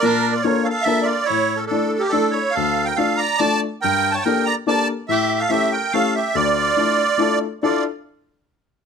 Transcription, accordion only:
\new Staff \with { instrumentName = "Accordion" } { \time 3/4 \key d \minor \tempo 4 = 142 bes'8. d''16 cis''8 f''32 f''32 r16 e''8 d''8 | cis''8. a'16 a'8. g'16 a'8 cis''8 | f''8. g''16 f''8 bes''8 a''8 r8 | g''8. a''16 g''8 bes''8 a''8 r8 |
e''8. f''16 e''8 g''8 f''8 e''8 | d''2~ d''8 r8 | d''8 r2 r8 | }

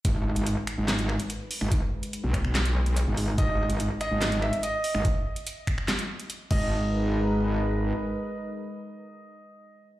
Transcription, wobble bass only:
\new Staff \with { instrumentName = "Wobble bass" } { \clef bass \time 4/4 \key gis \minor \tempo 4 = 144 gis,,8. gis,,8 r8 gis,,4 r4 gis,,16~ | gis,,16 r4 b,,8 b,,4. gis,,8. | gis,,8. gis,,8 r8 gis,,4 r4 gis,,16 | r2. r8 gis,,8~ |
gis,,2. r4 | r1 | }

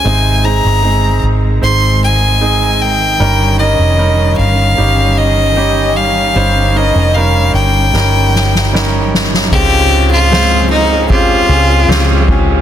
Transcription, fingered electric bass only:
\new Staff \with { instrumentName = "Fingered electric bass" } { \clef bass \time 4/4 \key ees \mixolydian \tempo 4 = 76 aes,,8. g,,8. aes,,8 aes,,2 | g,,8. f,,8. g,,8 g,,2 | g,,8. f,,8. g,,8 g,,2 | des,2~ des,8 des,8 des,4 | }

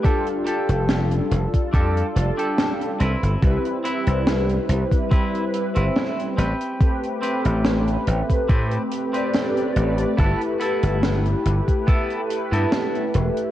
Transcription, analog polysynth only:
\new Staff \with { instrumentName = "Analog polysynth" } { \time 4/4 \key g \mixolydian \tempo 4 = 71 <g d' f' a'>2~ <g d' f' a'>8 <g d' f' a'>4 r8 | <g c' e' b'>2~ <g c' e' b'>8 <g c' e' b'>4 r8 | <a c' g' b'>2~ <a c' g' b'>8 r16 <a c' g' d''>4~ <a c' g' d''>16 | <a e' g' b'>2~ <a e' g' b'>8 <a e' g' b'>4. | }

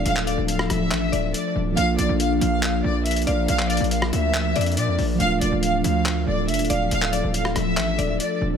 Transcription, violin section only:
\new Staff \with { instrumentName = "Violin section" } { \time 4/4 \key d \minor \tempo 4 = 140 f''8 d''8 f''8 e''4. d''8 r8 | f''8 d''8 f''8 f''4 d''8 e''8 f''8 | f''8 d''8 f''8 e''4. d''8 r8 | f''8 d''8 f''8 f''4 d''8 e''8 f''8 |
f''8 d''8 f''8 e''4. d''8 r8 | }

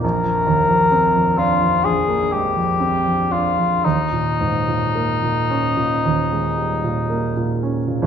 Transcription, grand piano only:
\new Staff \with { instrumentName = "Grand piano" } { \clef bass \time 4/4 \key ees \mixolydian \tempo 4 = 58 bes,,16 f,16 ees,16 f,16 c'16 f,16 d'16 f,16 bes,,16 bes16 aes16 f,16 c'16 f,16 d'16 f,16 | ees,16 bes,16 aes,16 bes,16 bes16 bes,16 des'16 bes,16 ees,16 aes16 g16 bes,16 bes16 bes,16 des'16 bes,16 | }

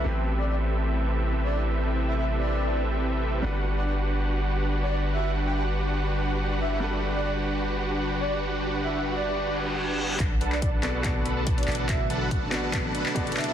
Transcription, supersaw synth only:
\new Staff \with { instrumentName = "Supersaw synth" } { \time 4/4 \key g \major \tempo 4 = 142 <c' g' a' b' e''>1~ | <c' g' a' b' e''>1 | <d' fis' g' b' fis''>1~ | <d' fis' g' b' fis''>1 |
<d' fis' g' b' fis''>1~ | <d' fis' g' b' fis''>1 | r8 <d' a' b' fis'' a''>16 <d' a' b' fis'' b''>16 <d' a' fis'' a''>8 <d' a' b' fis'' a''>16 <d' a' b' fis'' a''>16 <d' a' fis'' a''>8 <d' a' b' fis'' b''>16 <d' a' b' fis'' a''>16 <d' a' b' fis'' a''>8 <d' a' b' fis'' a''>16 <d' a' b' fis'' a''>16 | <d' a' b' fis'' a''>16 r16 <d' a' b' fis'' a''>16 <d' a' b' fis'' b''>16 r8 <d' a' b' fis'' a''>16 <d' a' b' fis'' a''>16 <d' a' b' a''>8 <d' a' b' fis'' b''>16 <d' a' b' fis'' a''>16 <d' a' b' fis''>8 <d' a' b' fis'' a''>16 <d' a' b' fis'' a''>16 | }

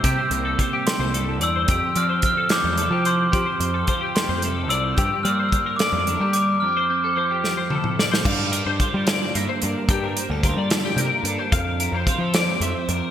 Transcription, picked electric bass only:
\new Staff \with { instrumentName = "Picked electric bass" } { \clef bass \time 6/8 \key f \major \tempo 4. = 73 c16 r16 c,8 r8. c,8. e,8 | f,16 r16 f8 r8. e,8 f8. | f16 r16 f,8 r8. f,8. c,8 | g,16 r16 g8 r8. f,8 g8. |
r2. | g,8. g,16 r16 g8 r16 g,16 r16 g,16 r16 | g,8 r16 d,8 g8 r16 c16 r16 g,16 r16 | f,8. f,16 r16 f8 r16 f,16 r16 f,16 r16 | }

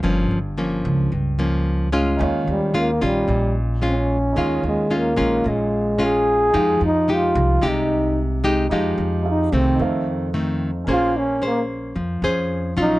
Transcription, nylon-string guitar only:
\new Staff \with { instrumentName = "Nylon-string guitar" } { \time 4/4 \key f \minor \tempo 4 = 111 << { <f bes des'>8 r8 <f bes des'>4 r8 <f bes des'>4 <aes des' f'>8~ | <aes des' f'>4 <aes des' f'>8 <des' f'>4. <aes des' f'>8 r8 | <aes des' f'>4 <aes des' f'>8 <aes des' f'>4. <aes des' f'>4 | <aes ees' g'>8 r8 <aes ees' g'>4 <aes ees' g'>4. <aes ees' g'>8 |
<aes ees' g'>4 r8 <ees a c'>4. <ees a c'>8 r8 | \key bes \minor <des' aes' c''>4 <des' aes' c''>4 r8 <des' aes' c''>4 <ges des' f'>8 | } \\ { g,2 g,2 | ees2 bes,2 | ees2 bes,2 | f2 c2 |
f2 f,2 | bes2 f2 | } >> }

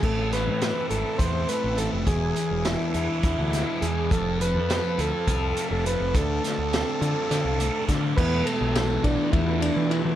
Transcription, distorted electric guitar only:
\new Staff \with { instrumentName = "Distorted electric guitar" } { \clef bass \time 7/8 \tempo 4 = 103 a,8 e8 c'8 e'8 c'8 a8 e8 | e,8 e8 d'8 e'8 d'8 gis8 e8 | f,8 f8 c'8 f'8 c'8 a8 f8 | d8 d8 c'8 f'8 c'8 a8 d8 |
<e, b, e>4. <e, b, e>2 | }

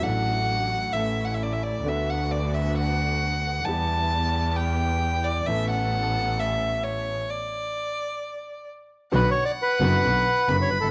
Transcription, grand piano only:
\new Staff \with { instrumentName = "Grand piano" } { \clef bass \time 4/4 \key a \mixolydian \tempo 4 = 132 <a,, a, fis a d' a'>2 <a,, a, e a cis' a'>2 | <d, d a b fis'>1 | <e, e g b g'>1 | <a,, a, e b cis' a'>1 |
r1 | \key b \minor <b,, b, d fis b fis'>8 r4 <fis,, fis, d fis b fis'>8 <b,, b, d fis b fis'>8 r8 <fis,, fis, d fis b fis'>8 r32 fis,,32 g,,32 r32 | }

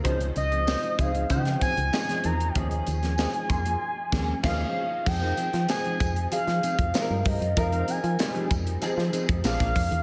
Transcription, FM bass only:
\new Staff \with { instrumentName = "FM bass" } { \clef bass \time 4/4 \key f \minor \tempo 4 = 96 des,8 des,8. r16 des,8 des8 r16 des,16 r8 fes,8 | ees,8 ees,8. r16 f,8 r8 ees,8 ees,8 r8 | f,8 r16 f16 r8 f,8 f16 f16 r16 f,16 r16 g,16 g,16 ges,16 | f,8 r16 f16 r8 f,8 f16 f16 r16 f,16 bes,,16 bes,,16 f,16 fes,16 | }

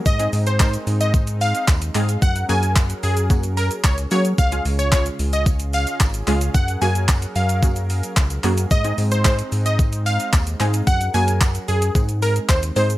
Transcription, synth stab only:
\new Staff \with { instrumentName = "Synth stab" } { \time 4/4 \key ges \lydian \tempo 4 = 111 r16 <aes c' ees' aes'>8 r16 <aes c' ees' bes'>4. r4 <aes c' ees' aes'>8 | r8 <bes des' ges' aes'>4 r8 <bes des' ges' aes'>4 r8 <bes des' ges' aes'>8 | r16 <aes des' f' aes'>8 r16 <aes des' f' aes'>4. r4 <aes des' f' aes'>8 | r8 <bes des' ges' aes'>4 r8 <bes des' ges' aes'>4 r8 <bes des' ges' aes'>8 |
r16 <aes c' ees' aes'>8 r16 <aes c' ees' aes'>4. r4 <aes c' ees' aes'>8 | r8 <bes des' ges' aes'>4 r8 <aes c' ees' aes'>4 r8 <aes c' ees' aes'>8 | }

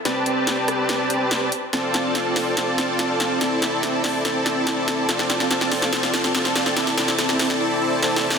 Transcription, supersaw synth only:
\new Staff \with { instrumentName = "Supersaw synth" } { \time 4/4 \key a \minor \tempo 4 = 143 <c' g' b' d'' a''>2.~ <c' g' b' d'' a''>8 r8 | <c' f' a' d'' a''>2 <c' f' a' d'' a''>2 | <c' e' a' d'' a''>2 <c' e' a' d'' a''>2 | <c' f' a' d'' a''>4 <c' f' a' d'' a''>4 <c' f' a' d'' a''>4 <c' f' a' d'' a''>4 |
<c' e' a' d'' a''>8 <c' e' a' d'' a''>8 <c' e' a' d'' a''>8 <c' e' a' d'' a''>8 <c' e' a' d'' a''>8 <c' e' a' d'' a''>8 <c' e' a' d'' a''>8 <c' e' a' d'' a''>8 | }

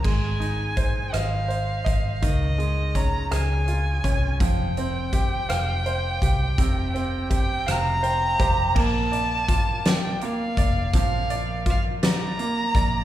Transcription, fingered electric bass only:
\new Staff \with { instrumentName = "Fingered electric bass" } { \clef bass \time 6/8 \key bes \major \tempo 4. = 55 aes,,4. aes,,4 aes,,8 | des,4. des,4 c,8 | f,,4. f,,4 c,8 | f,,4. f,,4 f,,8 |
bes,,2~ bes,,8 f,,8 | bes,,2~ bes,,8 bes,,8 | }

